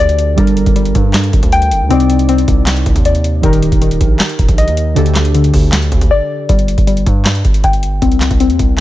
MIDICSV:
0, 0, Header, 1, 5, 480
1, 0, Start_track
1, 0, Tempo, 382166
1, 474, Time_signature, 4, 2, 24, 8
1, 11055, End_track
2, 0, Start_track
2, 0, Title_t, "Synth keys"
2, 0, Program_c, 0, 88
2, 0, Control_c, 0, 64, 127
2, 0, Note_on_c, 0, 50, 73
2, 0, Note_on_c, 0, 62, 70
2, 0, Note_on_c, 0, 67, 75
2, 0, Note_on_c, 0, 69, 87
2, 424, Note_off_c, 0, 50, 0
2, 431, Note_off_c, 0, 62, 0
2, 438, Note_off_c, 0, 67, 0
2, 445, Note_off_c, 0, 69, 0
2, 453, Note_on_c, 0, 55, 81
2, 466, Note_on_c, 0, 62, 76
2, 480, Note_on_c, 0, 69, 72
2, 488, Control_c, 0, 64, 0
2, 494, Note_on_c, 0, 70, 82
2, 702, Control_c, 0, 64, 127
2, 2344, Note_off_c, 0, 55, 0
2, 2351, Note_off_c, 0, 62, 0
2, 2358, Note_off_c, 0, 69, 0
2, 2365, Note_off_c, 0, 70, 0
2, 2371, Note_on_c, 0, 48, 81
2, 2386, Note_on_c, 0, 60, 75
2, 2399, Note_on_c, 0, 63, 79
2, 2411, Control_c, 0, 64, 0
2, 2413, Note_on_c, 0, 74, 89
2, 2621, Control_c, 0, 64, 127
2, 4264, Note_off_c, 0, 48, 0
2, 4271, Note_off_c, 0, 60, 0
2, 4278, Note_off_c, 0, 63, 0
2, 4285, Note_off_c, 0, 74, 0
2, 4291, Note_on_c, 0, 51, 80
2, 4305, Note_on_c, 0, 63, 75
2, 4319, Note_on_c, 0, 67, 77
2, 4326, Control_c, 0, 64, 0
2, 4333, Note_on_c, 0, 70, 82
2, 4582, Control_c, 0, 64, 127
2, 6184, Note_off_c, 0, 51, 0
2, 6191, Note_off_c, 0, 63, 0
2, 6198, Note_off_c, 0, 67, 0
2, 6205, Note_off_c, 0, 70, 0
2, 6212, Note_on_c, 0, 50, 73
2, 6226, Note_on_c, 0, 62, 72
2, 6240, Note_on_c, 0, 67, 73
2, 6248, Control_c, 0, 64, 0
2, 6254, Note_on_c, 0, 69, 91
2, 6502, Control_c, 0, 64, 127
2, 8104, Note_off_c, 0, 50, 0
2, 8111, Note_off_c, 0, 62, 0
2, 8118, Note_off_c, 0, 67, 0
2, 8125, Note_off_c, 0, 69, 0
2, 8170, Control_c, 0, 64, 0
2, 11055, End_track
3, 0, Start_track
3, 0, Title_t, "Synth pluck"
3, 0, Program_c, 1, 84
3, 0, Note_on_c, 1, 50, 77
3, 0, Note_on_c, 1, 74, 96
3, 473, Note_off_c, 1, 74, 0
3, 474, Note_off_c, 1, 50, 0
3, 475, Note_on_c, 1, 55, 93
3, 937, Note_off_c, 1, 55, 0
3, 952, Note_on_c, 1, 55, 81
3, 1917, Note_on_c, 1, 79, 99
3, 2393, Note_off_c, 1, 55, 0
3, 2393, Note_on_c, 1, 60, 95
3, 2395, Note_off_c, 1, 79, 0
3, 2861, Note_off_c, 1, 60, 0
3, 2876, Note_on_c, 1, 60, 86
3, 3837, Note_on_c, 1, 74, 87
3, 4314, Note_on_c, 1, 51, 94
3, 4315, Note_off_c, 1, 60, 0
3, 4315, Note_off_c, 1, 74, 0
3, 4776, Note_off_c, 1, 51, 0
3, 4792, Note_on_c, 1, 51, 78
3, 5755, Note_on_c, 1, 75, 89
3, 6232, Note_off_c, 1, 51, 0
3, 6234, Note_off_c, 1, 75, 0
3, 6234, Note_on_c, 1, 50, 94
3, 6700, Note_off_c, 1, 50, 0
3, 6715, Note_on_c, 1, 50, 80
3, 7672, Note_on_c, 1, 74, 92
3, 8153, Note_off_c, 1, 74, 0
3, 8154, Note_off_c, 1, 50, 0
3, 8155, Note_on_c, 1, 55, 91
3, 8617, Note_off_c, 1, 55, 0
3, 8632, Note_on_c, 1, 55, 78
3, 9596, Note_on_c, 1, 79, 94
3, 10072, Note_off_c, 1, 55, 0
3, 10072, Note_on_c, 1, 60, 93
3, 10075, Note_off_c, 1, 79, 0
3, 10541, Note_off_c, 1, 60, 0
3, 10556, Note_on_c, 1, 60, 86
3, 11055, Note_off_c, 1, 60, 0
3, 11055, End_track
4, 0, Start_track
4, 0, Title_t, "808-style bass"
4, 0, Program_c, 2, 38
4, 0, Note_on_c, 2, 38, 102
4, 449, Note_off_c, 2, 38, 0
4, 473, Note_on_c, 2, 31, 109
4, 819, Note_off_c, 2, 31, 0
4, 832, Note_on_c, 2, 31, 103
4, 1178, Note_off_c, 2, 31, 0
4, 1193, Note_on_c, 2, 43, 106
4, 1654, Note_off_c, 2, 43, 0
4, 1672, Note_on_c, 2, 31, 106
4, 1788, Note_off_c, 2, 31, 0
4, 1793, Note_on_c, 2, 38, 110
4, 2153, Note_on_c, 2, 30, 96
4, 2172, Note_off_c, 2, 38, 0
4, 2273, Note_on_c, 2, 38, 100
4, 2292, Note_off_c, 2, 30, 0
4, 2387, Note_off_c, 2, 38, 0
4, 2393, Note_on_c, 2, 36, 108
4, 3084, Note_off_c, 2, 36, 0
4, 3113, Note_on_c, 2, 36, 106
4, 3574, Note_off_c, 2, 36, 0
4, 3593, Note_on_c, 2, 36, 108
4, 3708, Note_off_c, 2, 36, 0
4, 3714, Note_on_c, 2, 39, 103
4, 4289, Note_off_c, 2, 39, 0
4, 4313, Note_on_c, 2, 27, 110
4, 4659, Note_off_c, 2, 27, 0
4, 4672, Note_on_c, 2, 27, 106
4, 5018, Note_off_c, 2, 27, 0
4, 5033, Note_on_c, 2, 34, 107
4, 5263, Note_off_c, 2, 34, 0
4, 5513, Note_on_c, 2, 27, 107
4, 5628, Note_off_c, 2, 27, 0
4, 5633, Note_on_c, 2, 34, 111
4, 5873, Note_on_c, 2, 39, 99
4, 5892, Note_off_c, 2, 34, 0
4, 6215, Note_off_c, 2, 39, 0
4, 6233, Note_on_c, 2, 38, 112
4, 6924, Note_off_c, 2, 38, 0
4, 6953, Note_on_c, 2, 38, 108
4, 7414, Note_off_c, 2, 38, 0
4, 7433, Note_on_c, 2, 38, 105
4, 7548, Note_off_c, 2, 38, 0
4, 7553, Note_on_c, 2, 38, 105
4, 7669, Note_off_c, 2, 38, 0
4, 8153, Note_on_c, 2, 31, 112
4, 8499, Note_off_c, 2, 31, 0
4, 8512, Note_on_c, 2, 31, 104
4, 8858, Note_off_c, 2, 31, 0
4, 8873, Note_on_c, 2, 43, 105
4, 9334, Note_off_c, 2, 43, 0
4, 9353, Note_on_c, 2, 31, 101
4, 9583, Note_off_c, 2, 31, 0
4, 9592, Note_on_c, 2, 31, 107
4, 10054, Note_off_c, 2, 31, 0
4, 10073, Note_on_c, 2, 36, 108
4, 10419, Note_off_c, 2, 36, 0
4, 10432, Note_on_c, 2, 36, 111
4, 10673, Note_on_c, 2, 39, 97
4, 10692, Note_off_c, 2, 36, 0
4, 10787, Note_off_c, 2, 39, 0
4, 10793, Note_on_c, 2, 36, 105
4, 11055, Note_off_c, 2, 36, 0
4, 11055, End_track
5, 0, Start_track
5, 0, Title_t, "Drums"
5, 113, Note_on_c, 9, 42, 53
5, 233, Note_off_c, 9, 42, 0
5, 233, Note_on_c, 9, 42, 81
5, 359, Note_off_c, 9, 42, 0
5, 473, Note_on_c, 9, 36, 112
5, 473, Note_on_c, 9, 42, 87
5, 593, Note_off_c, 9, 42, 0
5, 593, Note_on_c, 9, 42, 59
5, 599, Note_off_c, 9, 36, 0
5, 713, Note_off_c, 9, 42, 0
5, 713, Note_on_c, 9, 42, 74
5, 832, Note_on_c, 9, 36, 90
5, 834, Note_off_c, 9, 42, 0
5, 834, Note_on_c, 9, 42, 55
5, 953, Note_off_c, 9, 42, 0
5, 953, Note_on_c, 9, 42, 80
5, 958, Note_off_c, 9, 36, 0
5, 1073, Note_off_c, 9, 42, 0
5, 1073, Note_on_c, 9, 42, 54
5, 1193, Note_off_c, 9, 42, 0
5, 1193, Note_on_c, 9, 36, 92
5, 1193, Note_on_c, 9, 42, 82
5, 1319, Note_off_c, 9, 36, 0
5, 1319, Note_off_c, 9, 42, 0
5, 1430, Note_on_c, 9, 39, 97
5, 1433, Note_on_c, 9, 38, 120
5, 1433, Note_on_c, 9, 42, 79
5, 1553, Note_off_c, 9, 42, 0
5, 1553, Note_on_c, 9, 42, 60
5, 1556, Note_off_c, 9, 39, 0
5, 1559, Note_off_c, 9, 38, 0
5, 1673, Note_off_c, 9, 42, 0
5, 1673, Note_on_c, 9, 36, 87
5, 1673, Note_on_c, 9, 42, 73
5, 1793, Note_off_c, 9, 36, 0
5, 1793, Note_off_c, 9, 42, 0
5, 1793, Note_on_c, 9, 36, 88
5, 1793, Note_on_c, 9, 42, 66
5, 1913, Note_off_c, 9, 42, 0
5, 1913, Note_on_c, 9, 42, 92
5, 1919, Note_off_c, 9, 36, 0
5, 2033, Note_off_c, 9, 42, 0
5, 2033, Note_on_c, 9, 42, 53
5, 2153, Note_off_c, 9, 42, 0
5, 2153, Note_on_c, 9, 42, 82
5, 2279, Note_off_c, 9, 42, 0
5, 2393, Note_on_c, 9, 42, 88
5, 2513, Note_off_c, 9, 42, 0
5, 2513, Note_on_c, 9, 42, 59
5, 2633, Note_off_c, 9, 42, 0
5, 2633, Note_on_c, 9, 42, 75
5, 2753, Note_off_c, 9, 42, 0
5, 2753, Note_on_c, 9, 42, 57
5, 2873, Note_off_c, 9, 42, 0
5, 2873, Note_on_c, 9, 42, 85
5, 2993, Note_off_c, 9, 42, 0
5, 2993, Note_on_c, 9, 42, 58
5, 3113, Note_off_c, 9, 42, 0
5, 3113, Note_on_c, 9, 36, 90
5, 3113, Note_on_c, 9, 42, 83
5, 3238, Note_off_c, 9, 36, 0
5, 3239, Note_off_c, 9, 42, 0
5, 3351, Note_on_c, 9, 39, 95
5, 3353, Note_on_c, 9, 38, 119
5, 3353, Note_on_c, 9, 42, 78
5, 3473, Note_off_c, 9, 42, 0
5, 3473, Note_on_c, 9, 42, 59
5, 3476, Note_off_c, 9, 39, 0
5, 3479, Note_off_c, 9, 38, 0
5, 3593, Note_off_c, 9, 42, 0
5, 3593, Note_on_c, 9, 36, 85
5, 3593, Note_on_c, 9, 42, 73
5, 3713, Note_off_c, 9, 36, 0
5, 3713, Note_on_c, 9, 36, 91
5, 3714, Note_off_c, 9, 42, 0
5, 3714, Note_on_c, 9, 42, 68
5, 3833, Note_off_c, 9, 42, 0
5, 3833, Note_on_c, 9, 42, 91
5, 3839, Note_off_c, 9, 36, 0
5, 3954, Note_off_c, 9, 42, 0
5, 3954, Note_on_c, 9, 42, 54
5, 4073, Note_off_c, 9, 42, 0
5, 4073, Note_on_c, 9, 42, 83
5, 4199, Note_off_c, 9, 42, 0
5, 4313, Note_on_c, 9, 36, 109
5, 4313, Note_on_c, 9, 42, 90
5, 4433, Note_off_c, 9, 42, 0
5, 4433, Note_on_c, 9, 42, 59
5, 4439, Note_off_c, 9, 36, 0
5, 4553, Note_off_c, 9, 42, 0
5, 4553, Note_on_c, 9, 42, 76
5, 4672, Note_on_c, 9, 36, 92
5, 4673, Note_off_c, 9, 42, 0
5, 4673, Note_on_c, 9, 42, 56
5, 4793, Note_off_c, 9, 42, 0
5, 4793, Note_on_c, 9, 42, 82
5, 4798, Note_off_c, 9, 36, 0
5, 4913, Note_off_c, 9, 42, 0
5, 4913, Note_on_c, 9, 42, 56
5, 5033, Note_off_c, 9, 42, 0
5, 5033, Note_on_c, 9, 36, 92
5, 5033, Note_on_c, 9, 42, 84
5, 5159, Note_off_c, 9, 36, 0
5, 5159, Note_off_c, 9, 42, 0
5, 5271, Note_on_c, 9, 39, 95
5, 5273, Note_on_c, 9, 38, 121
5, 5273, Note_on_c, 9, 42, 77
5, 5393, Note_off_c, 9, 42, 0
5, 5393, Note_on_c, 9, 42, 57
5, 5396, Note_off_c, 9, 39, 0
5, 5399, Note_off_c, 9, 38, 0
5, 5513, Note_off_c, 9, 42, 0
5, 5513, Note_on_c, 9, 36, 86
5, 5513, Note_on_c, 9, 42, 71
5, 5633, Note_off_c, 9, 36, 0
5, 5633, Note_off_c, 9, 42, 0
5, 5633, Note_on_c, 9, 36, 91
5, 5633, Note_on_c, 9, 42, 68
5, 5753, Note_off_c, 9, 42, 0
5, 5753, Note_on_c, 9, 42, 92
5, 5759, Note_off_c, 9, 36, 0
5, 5874, Note_off_c, 9, 42, 0
5, 5874, Note_on_c, 9, 42, 56
5, 5993, Note_off_c, 9, 42, 0
5, 5993, Note_on_c, 9, 42, 83
5, 6119, Note_off_c, 9, 42, 0
5, 6233, Note_on_c, 9, 42, 93
5, 6353, Note_off_c, 9, 42, 0
5, 6353, Note_on_c, 9, 42, 57
5, 6470, Note_on_c, 9, 39, 76
5, 6473, Note_on_c, 9, 38, 93
5, 6474, Note_off_c, 9, 42, 0
5, 6474, Note_on_c, 9, 42, 64
5, 6593, Note_off_c, 9, 42, 0
5, 6593, Note_on_c, 9, 42, 59
5, 6596, Note_off_c, 9, 39, 0
5, 6599, Note_off_c, 9, 38, 0
5, 6713, Note_off_c, 9, 42, 0
5, 6713, Note_on_c, 9, 42, 82
5, 6833, Note_off_c, 9, 42, 0
5, 6833, Note_on_c, 9, 42, 57
5, 6953, Note_on_c, 9, 36, 89
5, 6953, Note_on_c, 9, 46, 79
5, 6959, Note_off_c, 9, 42, 0
5, 7079, Note_off_c, 9, 36, 0
5, 7079, Note_off_c, 9, 46, 0
5, 7191, Note_on_c, 9, 39, 93
5, 7193, Note_on_c, 9, 38, 118
5, 7193, Note_on_c, 9, 42, 75
5, 7313, Note_off_c, 9, 42, 0
5, 7313, Note_on_c, 9, 42, 57
5, 7316, Note_off_c, 9, 39, 0
5, 7319, Note_off_c, 9, 38, 0
5, 7433, Note_on_c, 9, 36, 87
5, 7434, Note_off_c, 9, 42, 0
5, 7434, Note_on_c, 9, 42, 70
5, 7553, Note_off_c, 9, 36, 0
5, 7553, Note_off_c, 9, 42, 0
5, 7553, Note_on_c, 9, 36, 93
5, 7553, Note_on_c, 9, 42, 67
5, 7679, Note_off_c, 9, 36, 0
5, 7679, Note_off_c, 9, 42, 0
5, 8153, Note_on_c, 9, 36, 106
5, 8153, Note_on_c, 9, 42, 90
5, 8273, Note_off_c, 9, 42, 0
5, 8273, Note_on_c, 9, 42, 58
5, 8279, Note_off_c, 9, 36, 0
5, 8393, Note_off_c, 9, 42, 0
5, 8393, Note_on_c, 9, 42, 74
5, 8512, Note_on_c, 9, 36, 88
5, 8513, Note_off_c, 9, 42, 0
5, 8513, Note_on_c, 9, 42, 54
5, 8633, Note_off_c, 9, 42, 0
5, 8633, Note_on_c, 9, 42, 81
5, 8638, Note_off_c, 9, 36, 0
5, 8753, Note_off_c, 9, 42, 0
5, 8753, Note_on_c, 9, 42, 54
5, 8873, Note_off_c, 9, 42, 0
5, 8873, Note_on_c, 9, 36, 89
5, 8873, Note_on_c, 9, 42, 82
5, 8998, Note_off_c, 9, 36, 0
5, 8999, Note_off_c, 9, 42, 0
5, 9110, Note_on_c, 9, 39, 91
5, 9113, Note_on_c, 9, 38, 120
5, 9113, Note_on_c, 9, 42, 72
5, 9233, Note_off_c, 9, 42, 0
5, 9233, Note_on_c, 9, 42, 56
5, 9236, Note_off_c, 9, 39, 0
5, 9239, Note_off_c, 9, 38, 0
5, 9353, Note_off_c, 9, 42, 0
5, 9353, Note_on_c, 9, 36, 81
5, 9353, Note_on_c, 9, 42, 67
5, 9473, Note_off_c, 9, 42, 0
5, 9473, Note_on_c, 9, 42, 65
5, 9478, Note_off_c, 9, 36, 0
5, 9592, Note_on_c, 9, 36, 95
5, 9593, Note_off_c, 9, 42, 0
5, 9593, Note_on_c, 9, 42, 88
5, 9713, Note_off_c, 9, 42, 0
5, 9713, Note_on_c, 9, 42, 53
5, 9718, Note_off_c, 9, 36, 0
5, 9833, Note_off_c, 9, 42, 0
5, 9833, Note_on_c, 9, 42, 81
5, 9958, Note_off_c, 9, 42, 0
5, 10073, Note_on_c, 9, 36, 106
5, 10073, Note_on_c, 9, 42, 88
5, 10193, Note_off_c, 9, 42, 0
5, 10193, Note_on_c, 9, 42, 57
5, 10198, Note_off_c, 9, 36, 0
5, 10309, Note_on_c, 9, 39, 73
5, 10312, Note_on_c, 9, 38, 93
5, 10313, Note_off_c, 9, 42, 0
5, 10313, Note_on_c, 9, 42, 70
5, 10432, Note_on_c, 9, 36, 89
5, 10433, Note_off_c, 9, 42, 0
5, 10433, Note_on_c, 9, 42, 54
5, 10435, Note_off_c, 9, 39, 0
5, 10438, Note_off_c, 9, 38, 0
5, 10553, Note_off_c, 9, 42, 0
5, 10553, Note_on_c, 9, 42, 80
5, 10558, Note_off_c, 9, 36, 0
5, 10673, Note_off_c, 9, 42, 0
5, 10673, Note_on_c, 9, 42, 54
5, 10793, Note_off_c, 9, 42, 0
5, 10793, Note_on_c, 9, 36, 86
5, 10793, Note_on_c, 9, 42, 82
5, 10918, Note_off_c, 9, 36, 0
5, 10919, Note_off_c, 9, 42, 0
5, 11055, End_track
0, 0, End_of_file